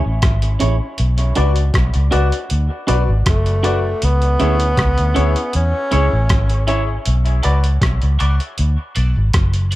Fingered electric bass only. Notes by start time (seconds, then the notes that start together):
0.06 A1
0.23 G#1
0.62 A1
1.00 B1
1.38 C#2
1.75 B1
1.96 C#2
2.14 C#2
2.51 D2
2.89 B1
3.09 G#1
3.27 F#1
4.03 C#2
4.41 D2
4.78 C#2
4.99 D2
5.17 D2
5.55 E2
5.93 C#2
6.13 A1
6.31 G#1
7.07 B1
7.45 C#2
7.82 B1
8.03 C#2
8.21 C#2
8.59 D2
8.97 B1
9.17 G#1
9.35 F#1